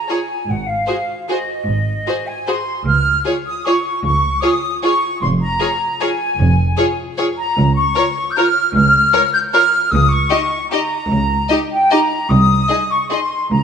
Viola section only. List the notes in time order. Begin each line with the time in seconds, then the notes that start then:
0.09 F4
0.88 F#4
1.29 F#4
2.06 F#4
2.47 F#4
3.25 F4
3.66 F4
4.43 F4
4.83 F4
5.60 F4
6.01 F4
6.78 F4
7.18 F4
7.95 F4
8.37 F4
9.13 F4
9.53 F4
10.31 D#4
10.72 D#4
11.50 D#4
11.92 D#4
12.70 D#4
13.11 D#4